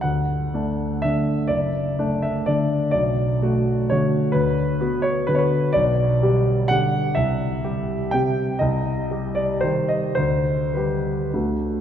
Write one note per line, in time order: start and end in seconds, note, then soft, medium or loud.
0.01 0.53 D2 soft
0.01 1.03 F#5 medium
0.54 1.00 A3 soft
0.54 1.00 D4 soft
1.02 1.46 D3 soft
1.02 1.46 A3 soft
1.02 1.46 D4 soft
1.02 1.48 E5 medium
1.48 1.98 F#1 soft
1.48 2.23 D5 medium
1.99 2.45 A3 soft
1.99 2.45 D4 soft
2.22 2.47 E5 medium
2.46 2.91 D3 soft
2.46 2.91 A3 soft
2.46 2.91 D4 soft
2.46 2.90 D5 medium
2.91 3.41 B1 soft
2.91 3.90 D5 medium
3.42 3.88 A3 soft
3.42 3.88 F#4 soft
3.90 4.32 D3 soft
3.90 4.32 A3 soft
3.90 4.32 F#4 soft
3.90 4.35 C#5 medium
4.32 4.79 D2 soft
4.32 5.03 B4 medium
4.80 5.24 B3 soft
4.80 5.24 F#4 soft
5.02 5.27 C#5 medium
5.27 5.70 D3 soft
5.27 5.71 B3 soft
5.27 5.71 F#4 soft
5.27 5.34 B4 medium
5.35 5.73 B4 medium
5.35 5.41 C#5 medium
5.73 6.21 B1 soft
5.73 6.70 D5 medium
6.23 6.67 G3 soft
6.23 6.67 G4 soft
6.68 7.13 D3 soft
6.68 7.13 G3 soft
6.68 7.13 G4 soft
6.68 7.15 F#5 medium
7.15 7.64 C2 soft
7.15 8.13 E5 medium
7.64 8.10 G3 soft
7.64 8.10 G4 medium
8.11 8.57 C3 soft
8.11 8.57 G3 soft
8.11 8.58 G4 soft
8.11 8.60 G5 medium
8.59 9.09 C2 medium
8.59 9.36 D#5 medium
9.11 9.60 G3 soft
9.11 9.60 G4 soft
9.35 9.62 D5 medium
9.61 10.14 D#3 soft
9.61 10.14 G3 soft
9.61 10.14 G4 soft
9.61 9.89 C5 medium
9.89 10.17 D#5 medium
10.15 10.75 D2 soft
10.15 10.75 C5 medium
10.74 11.30 G3 soft
10.74 11.31 G4 soft
10.74 11.33 B4 soft
11.34 11.81 D2 soft
11.34 11.81 D3 soft
11.34 11.81 A3 soft
11.34 11.81 F#4 soft